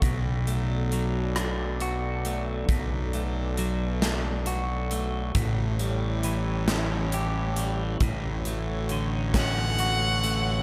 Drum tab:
HH |xxxxxx|xxxxxx|xxxxxx|xxxxxx|
SD |---r--|---o--|---o--|---o--|
BD |o-----|o-----|o-----|o--o--|